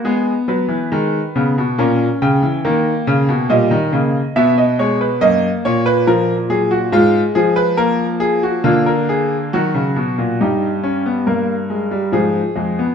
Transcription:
<<
  \new Staff \with { instrumentName = "Grand piano" } { \time 3/4 \key dis \phrygian \tempo 4 = 70 gis'8 b'4. ais'8 g''8~ | g''4 dis''4 e''16 dis''16 cis''16 b'16 | dis''8 cis''16 b'16 ais'8 gis'16 fis'16 f'8 aes'16 ces''16 | ais'8 gis'16 fis'16 eis'16 ais'16 gis'8 fis'4 |
g'4 ais'4 gis'4 | }
  \new Staff \with { instrumentName = "Grand piano" } { \clef bass \time 3/4 \key dis \phrygian << { b4 gis8 b8 cis'4 | ais4 g8 ais8 b8 gis8 | ais4 eis8 fis8 aes4 | ais4 ais4 fis4 |
dis'8 cis'16 b16 ais8 gis16 g16 eis8 gis16 b16 | } \\ { gis8 fis16 e16 dis8 cis16 b,16 ais,8 cis16 e16 | dis8 cis16 b,16 ais,16 dis16 cis8 b,4 | fis,8 ais,4. aes,8 f8~ | f4 d4 dis16 cis16 b,16 ais,16 |
g,4 g,4 gis,8 eis,8 | } >> }
>>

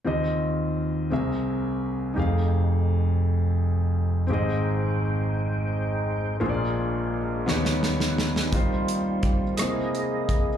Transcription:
<<
  \new Staff \with { instrumentName = "French horn section" } { \time 6/8 \key ees \major \tempo 4. = 57 << { r2. | r2. | r2. | r2. |
c''2. | } \\ { r2. | r2. | r2. | r2. |
<ees' f' g'>4. <e' gis' bes'>4. | } >> }
  \new Staff \with { instrumentName = "Grand piano" } { \time 6/8 \key ees \major <ees, ees c' f' g' ees''>4. <c, c c' gis' bes' e''>4. | <f,, f, ees' g' aes' f''>2. | <aes,, aes, c' g' aes' ees''>2. | <bes,, bes, bes f' aes' c'' d''>4. <ees, ees ces' ees' ges' g' des''>4. |
<ees g ees' f' c''>4. <c bes e' gis' c''>4. | }
  \new Staff \with { instrumentName = "Tonewheel organ" } { \time 6/8 \key ees \major r2. | r2. | <aes ees' c'' g''>2. | <aes d' f' a' bes'>4. <g des' ees' ces''>4. |
f'4 g'8 gis'4. | }
  \new Staff \with { instrumentName = "Tonewheel organ" } { \time 6/8 \key ees \major r2. | r2. | r2. | r2. |
<g bes c'>4. <gis bes e' dis''>4. | }
  \new DrumStaff \with { instrumentName = "Drums" } \drummode { \time 6/8 r4. r4. | r4. r4. | r4. r4. | r4. sn16 sn16 sn16 sn16 sn16 sn16 |
<hh bd>8 hh8 <hh bd ss>8 <hh ss>8 hh8 <hh bd>8 | }
>>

